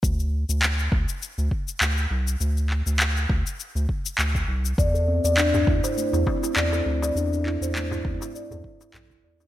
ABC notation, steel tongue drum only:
X:1
M:4/4
L:1/16
Q:"Swing 16ths" 1/4=101
K:Bblyd
V:1 name="Steel tongue drum"
z16 | z16 | d A C d D D E c A, E C E d A C d | D D E c A, E C E d A z2 A E d D |]